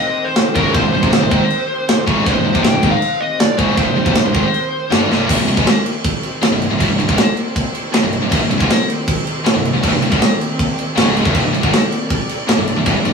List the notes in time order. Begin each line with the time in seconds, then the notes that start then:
Already playing: D#3 C4 G4 C5
0.00 D#5
0.25 C5
0.36 snare, china
0.54 C#1 C#2 G#2 C#3 A#4, kick
0.73 C1 C2 G2 C5, kick, china
0.83 C1 C2 G2
0.93 C1 C2 G2 C5
1.02 F1 F2 C3, kick
1.12 C1 C2 G2, snare, china
1.21 C1 C2 G2
1.30 G#1 G#2 D#3, kick
1.50 china
1.88 snare, china
2.07 C#1 C#2 G#2 C#3, kick
2.25 C1 C2 G2 C5, kick, china
2.35 C1 C2 G2
2.45 C1 C2 G2
2.54 F1 F2 C3, kick
2.63 C1 C2 G2 G5, snare, china
2.73 C1 C2 G2
2.83 G#1 G#2 D#3, kick
2.92 F5
3.02 china
3.21 D#5
3.39 D5, snare, china
3.58 C#1 C#2 G#2 C#3 C5, kick
3.77 C1 C2 G2, kick, china
3.87 C1 C2 G2
3.97 C1 C2 G2
4.05 F1 F2 C3, kick
4.15 C1 C2 G2, snare, china
4.24 C1 C2 G2
4.34 G#1 G#2 D#3, kick
4.54 china
4.91 G1 G2 D3 G3, snare, china
5.10 C1 C2 G2 C3, snare
5.28 C1 C2 G2 D#3 C4 G4 C5, kick, crash
5.38 C1 C2 G2
5.47 C1 C2 G2, crash
5.57 C#1 C#2 G#2, kick
5.67 snare, crash
5.86 crash
6.04 kick, crash
6.23 crash
6.42 muted distorted electric guitar stroke, muted picked electric bass stroke, snare, crash
6.52 C1 C2 G2
6.62 crash
6.70 C1 C2 G2
6.80 C1 C2 G2, kick, crash
6.90 C1 C2 G2
6.99 C1 C2 G2, crash
7.09 C#1 C#2 G#2, kick
7.18 snare, crash
7.37 crash
7.56 kick, crash
7.75 crash
7.94 muted picked electric bass stroke, muted distorted electric guitar stroke, snare, crash
8.03 C1 C2 G2
8.13 crash
8.22 C1 C2 G2
8.31 C1 C2 G2, kick, crash
8.41 C1 C2 G2
8.50 C1 C2 G2, crash
8.60 C#1 C#2 G#2, kick
8.70 snare, crash
8.90 crash
9.08 kick, crash
9.27 crash
9.45 muted distorted electric guitar stroke, muted picked electric bass stroke, snare, crash
9.54 C1 C2 G2
9.65 crash
9.73 C1 C2 G2
9.83 C1 C2 G2, kick, crash
9.92 C1 C2 G2
10.02 C1 C2 G2, crash
10.12 C#1 C#2 G#2, kick
10.22 snare, crash
10.41 crash
10.59 kick, crash
10.79 crash
10.96 C#1 C#2 G#2 C#3, snare, crash
11.17 crash
11.25 C1 C2 G2, kick
11.33 C1 C2 G2 D5, kick, crash
11.43 C1 C2 G2
11.53 C1 C2 G2, crash
11.61 C#1 C#2 G#2, kick
11.73 snare, crash
11.92 crash
12.10 kick, crash
12.29 crash
12.48 muted picked electric bass stroke, muted distorted electric guitar stroke, snare, crash
12.58 C1 C2 G2
12.67 crash
12.77 C1 C2 G2
12.86 C1 C2 G2, kick, crash
12.96 C1 C2 G2
13.05 C1 C2 G2, crash